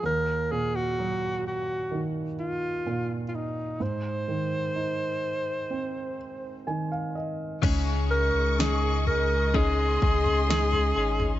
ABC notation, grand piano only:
X:1
M:4/4
L:1/16
Q:1/4=63
K:Abmix
V:1 name="Grand piano"
z16 | z12 a f e2 | z16 |]
V:2 name="Grand piano" clef=bass
E,,2 B,,2 G,4 E,4 B,,4 | A,,2 E,2 E4 C4 E,4 | D,4 [A,DE]4 [A,DE]4 [A,DE]4 |]